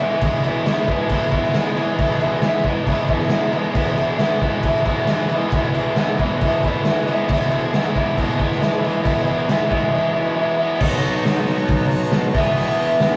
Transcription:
Already playing: E2
0.00 G#3 B3 E4, crash
0.04 E3
0.21 E2 B2 E3, kick, crash
0.26 G#3 B3 E4
0.44 G#3 B3 E4, crash
0.48 E3
0.66 E3 G#3, snare, crash
0.70 B3 E4
0.88 B2 E3 G#3 B3 E4, kick, crash
0.93 E2
1.09 E3 G#3 B3, kick, crash
1.15 E4
1.31 B2 E3 G#3 B3 E4, kick, crash
1.36 E2
1.43 snare
1.54 E3 G#3 B3, snare, crash
1.58 E4
1.77 G#3 B3 E4, crash
1.82 E3
1.99 E2 B2 E3 G#3 B3, kick, crash
2.03 E4
2.10 snare
2.21 G#3 B3 E4, crash
2.26 E3
2.42 E3 G#3, snare, crash
2.46 B3 E4
2.63 E4, kick, crash
2.68 E2 B2 E3 G#3 B3
2.87 E3 G#3, kick, crash
2.92 B3 E4
3.08 G#3 B3 E4, kick, crash
3.12 E2 B2 E3
3.19 snare
3.29 E3, snare, crash
3.33 G#3 B3 E4
3.52 G#3 B3 E4, crash
3.57 E3
3.73 E2 B2 E3 G#3 B3 E4, kick, crash
3.97 G#3 B3 E4, crash
4.01 E3
4.18 E3 G#3 B3, snare, crash
4.22 E4
4.42 G#3 B3 E4, kick, crash
4.46 E2 B2 E3
4.63 E3 G#3 B3, kick, crash
4.68 E4
4.85 E3 G#3 B3 E4, kick, crash
4.90 E2 B2
5.07 E3 G#3 B3, snare, crash
5.12 E4
5.29 E4, crash
5.34 E3 G#3 B3
5.51 E2 B2, kick, crash
5.55 E3 G#3 B3 E4
5.74 B3 E4, crash
5.79 E3 G#3
5.96 E3 G#3, snare, crash
6.01 B3 E4
6.19 E3 G#3 B3 E4, kick, crash
6.24 E2 B2
6.41 E3 G#3, kick, crash
6.46 B3 E4
6.64 E3 G#3 B3 E4, kick, crash
6.69 E2 B2
6.85 E3 G#3 B3, snare, crash
6.90 E4
7.08 B3 E4, crash
7.13 E3 G#3
7.29 E2 B2 E3, kick, crash
7.33 G#3 B3 E4
7.41 snare
7.51 G#3 B3 E4, crash
7.56 E3
7.74 E3 G#3 B3, snare, crash
7.80 E4
7.96 B2 E3 G#3 B3 E4, kick, crash
8.00 E2
8.17 E3 G#3 B3, kick, crash
8.23 E4
8.38 E3 G#3 B3 E4, kick, crash
8.42 E2 B2
8.52 snare
8.59 E3 G#3 B3, snare
8.63 E4, crash
8.79 G#3 B3 E4
8.84 E3, crash
9.00 E2 B2 E3 G#3 B3
9.05 E4, kick, crash
9.24 G#3 B3 E4, crash
9.29 E3
9.47 E3 G#3 B3, snare, crash
9.52 E4
9.69 B2 E3 G#3 B3 E4, kick, crash
9.74 E2
9.92 E3 G#3 B3
9.96 E4
10.13 E2 B2 E3 G#3 B3 E4
10.36 E3 G#3
10.40 B3 E4
10.58 G#3 B3 E4
10.62 E3
10.79 B2 F#3 B3 D#4, kick, crash
10.83 F#4
11.03 open hi-hat
11.25 snare, open hi-hat
11.37 snare
11.48 open hi-hat
11.68 kick, open hi-hat
11.91 open hi-hat
12.12 snare, open hi-hat
12.34 E2 B2 E3 B3 E4, kick, open hi-hat
12.38 G#4
12.57 open hi-hat
12.79 open hi-hat
13.00 snare, open hi-hat

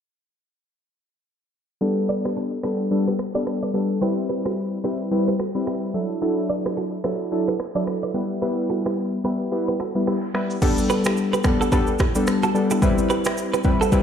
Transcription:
1.81 G3 B3 D4 A4, shaker
1.97 shaker
2.09 B4 D5, shaker
2.25 G4 B4, finger snap, cross-stick
2.37 D4 A4
2.63 G3 B3 D4 G4 A4 B4, finger snap, cross-stick
2.81 shaker
2.91 G3 B3 D4 A4, shaker
3.06 G4 B4, shaker
3.19 finger snap, cross-stick
3.34 G3 B3 D4 A4 B4 D5, shaker
3.47 finger snap, cross-stick
3.63 B4 D5
3.74 G3 B3 D4 G4 A4 B4
3.90 shaker
4.01 G3 C4 E4 G4 B4 C5
4.17 shaker
4.29 G4 B4
4.44 F#4 A4, finger snap, cross-stick, shaker
4.57 shaker
4.73 shaker
4.84 G3 C4 E4 G4 B4
5.01 shaker
5.11 G3 C4 E4 B4, shaker
5.27 G4 B4, shaker
5.39 F#4 A4, finger snap, cross-stick
5.55 G3 C4 E4 B4, shaker
5.67 E4 G4, finger snap, cross-stick
5.82 shaker
5.94 F#3 D4 E4 A4
6.10 shaker
6.21 F#3 D4 E4 A4, shaker
6.38 shaker
6.49 B4 D5, shaker
6.64 G4 B4, finger snap, cross-stick, shaker
6.77 F#4 A4, shaker
6.93 shaker
7.04 F#3 D4 E4 G4 A4 B4, finger snap, cross-stick
7.21 shaker
7.31 F#3 D4 E4 A4
7.47 G4 B4, shaker
7.60 finger snap, cross-stick
7.75 F#3 D4 E4 A4 B4 D5, shaker
7.87 finger snap, cross-stick
8.03 B4 D5
8.14 G3 B3 E4 G4 B4, shaker
8.30 shaker
8.42 G3 B3 E4 G4 B4, shaker
8.58 shaker
8.70 F#4 A4
8.84 E4 G4, finger snap, cross-stick, shaker
8.97 shaker
9.13 shaker
9.24 G3 B3 E4 G4 B4
9.42 shaker
9.52 G3 B3 E4 B4, shaker
9.68 G4 B4
9.80 F#4 A4, finger snap, cross-stick
9.95 G3 B3 E4 B4, shaker
10.07 E4 G4, finger snap, cross-stick
10.23 shaker
10.34 G3 B3 E4 B4, finger snap, cross-stick, shaker
10.50 shaker
10.62 G3 B3 D4 A4, kick, crash, shaker
10.78 shaker
10.90 G4 B4, shaker
11.04 E4 G4, finger snap, cross-stick, shaker
11.17 shaker
11.33 G4 B4, shaker
11.43 G3 B3 D4 A4, finger snap, kick, cross-stick, shaker
11.61 F#4 A4, shaker
11.72 G3 B3 D4 G4 A4 B4, kick, shaker
11.87 shaker
11.99 E4 G4, finger snap, kick, cross-stick, shaker
12.15 G3 B3 D4 A4, shaker
12.27 finger snap, cross-stick, shaker
12.43 F#4 A4, shaker
12.54 G3 B3 D4 A4, shaker
12.70 E4 G4, shaker
12.82 G3 C4 E4 B4, kick, shaker
12.98 shaker
13.10 G4 B4, shaker
13.25 E4 G4, finger snap, cross-stick, shaker
13.37 shaker
13.54 G4 B4, shaker
13.64 G3 C4 E4 B4, kick, shaker
13.81 F#4 A4, shaker
13.92 G3 C4 E4 G4 B4, kick, shaker

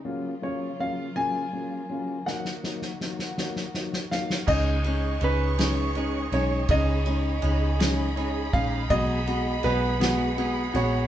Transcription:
Already playing: C#3
0.05 C#3 F#3 A#3 F4
0.42 C#3 F#3 A#3 F4 C#5
0.79 C#3 F#3 A#3 F4 F5
1.16 C#3 F#3 A#3 F4 G#5
1.53 C#3 F#3 A#3 F4
1.89 C#3 F#3 A#3 F4
2.26 D#2 D#3 F#3 A#3 D#4 F#4 F#5, snare
2.45 snare
2.63 F#3 A#3 D#4, snare
2.82 snare
3.00 F#3 A#3 D#4, snare
3.19 snare
3.37 F#3 A#3 D#4, snare
3.56 snare
3.74 F#3 A#3 D#4, snare
3.93 snare
4.11 F#3 A#3 D#4 F5, snare
4.30 snare
4.47 C#2 C#3 G#3 C#4 D#4 G#4 C#5 D#5 C#6, kick, crash
4.84 G#3 C#4 D#4 G#4, ride
5.21 C#2 G#3 C#4 D#4 G#4 B4, ride
5.58 C#3 G#3 C#4 D#4 G#4, snare, ride
5.95 G#3 C#4 D#4 G#4, ride
6.32 B1 G#3 C#4 D#4 G#4 C#5, ride
6.69 C#2 C#3 G#3 C#4 D#4 G#4 D#5 B5, kick, ride
7.06 G#3 C#4 D#4 G#4, ride
7.42 C#2 G#3 C#4 D#4 G#4, ride
7.79 C#3 G#3 C#4 D#4 G#4, snare, ride
8.16 G#3 C#4 D#4 G#4, ride
8.53 A#1 G#3 C#4 D#4 G#4 F5, kick, ride
8.90 B1 B2 D#3 F#3 G#3 B3 D#4 F#4 G#4 D#5 F#5, kick, ride
9.27 F#3 G#3 B3 D#4 F#4 G#4, ride
9.63 B1 F#3 G#3 B3 D#4 F#4 G#4 B4, ride
10.00 B2 D#3 F#3 G#3 B3 D#4 F#4 G#4, snare, ride
10.37 F#3 G#3 B3 D#4 F#4 G#4, ride
10.73 A#1 F#3 G#3 B3 D#4 F#4 G#4 C#5, ride

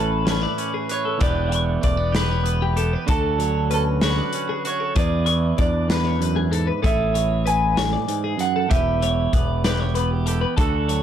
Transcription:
Already playing: A1 A2 E3 C#4 E4 A4 B4
0.25 C#4 B4 C#5, snare, closed hi-hat
0.42 E4 D5
0.58 C#4, closed hi-hat
0.74 G#4
0.89 B4 C#5, closed hi-hat
1.05 A4
1.18 E1 E2 E3 B3 D4 G4 D5, kick, closed hi-hat
1.22 B4
1.49 E3 C#6, closed hi-hat
1.81 E1 A3 D5, kick, closed hi-hat
1.97 B3
2.12 G4 B4, snare, closed hi-hat
2.31 C#5
2.43 B3 B4, closed hi-hat
2.62 G4
2.76 G4 A4, closed hi-hat
2.93 B4
3.07 D2 D3 F#4 A4, kick, closed hi-hat
3.38 F#3 C#5, closed hi-hat
3.71 C#4 A4 B4, closed hi-hat
4.01 F#4 C#5, snare, closed hi-hat
4.06 B4
4.18 D5
4.33 C#4, closed hi-hat
4.49 G#4
4.65 F#4 C#5, closed hi-hat
4.80 A4
4.95 E2 G#4 B4 D5, kick, closed hi-hat
5.26 E3 C#6, closed hi-hat
5.58 E2 D4 D5, kick, closed hi-hat
5.89 E2 B4, snare, closed hi-hat
6.05 C#5
6.19 F#2 B4, closed hi-hat
6.36 G#4
6.50 G#2 A4, closed hi-hat
6.67 B4
6.82 A1 A2 G#4 A4 E5, kick, closed hi-hat
7.14 E3 C#5, closed hi-hat
7.46 B4 G#5, closed hi-hat
7.77 A2 C#5, snare, closed hi-hat
7.93 D5
8.08 G#2, closed hi-hat
8.24 G#4
8.38 F#2 F#5, closed hi-hat
8.56 A4
8.69 E1 E2 G4 B4 E5, kick, closed hi-hat
9.01 E3 C#5, closed hi-hat
9.33 E1 B3 D5, kick, closed hi-hat
9.64 G4 B4, snare, closed hi-hat
9.80 C#5
9.95 B3 B4, closed hi-hat
10.11 G4
10.26 G4 A4, closed hi-hat
10.41 B4
10.57 D2 D3 F#4 A4, kick, closed hi-hat
10.88 F#3 C#5, closed hi-hat

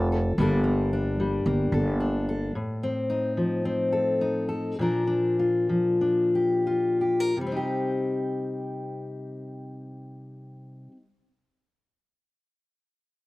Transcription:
Already playing: F1 F3 C4 F4 A4
0.12 A4
0.38 G1 G2 G3 A#3 D4 A4
0.64 A#3
0.93 D4
1.20 G3
1.46 G1 A#3
1.72 G1 A4
2.00 D4
2.29 A4
2.55 A2
2.83 C4
3.10 D#4
3.37 F3
3.65 C4
3.92 A4
4.21 D#4
4.49 A4
4.79 A#2 F3 D4 F4 A#4
5.07 D4
5.39 F4
5.69 F3
6.01 D4
6.35 G4
6.67 F4
7.01 G4
7.20 A#4
7.37 C3
7.41 G3
7.46 C4
7.52 D#4
7.56 G4

